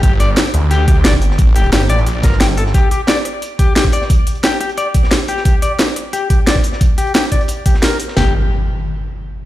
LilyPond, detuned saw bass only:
\new Staff \with { instrumentName = "Detuned saw bass" } { \clef bass \time 4/4 \key g \minor \tempo 4 = 177 g,,4 r8 d,4. g,,4 | a,,4 g,,8 a,,8 bes,,8 g,,4. | r1 | r1 |
r1 | r1 | g,,8 r2. r8 | }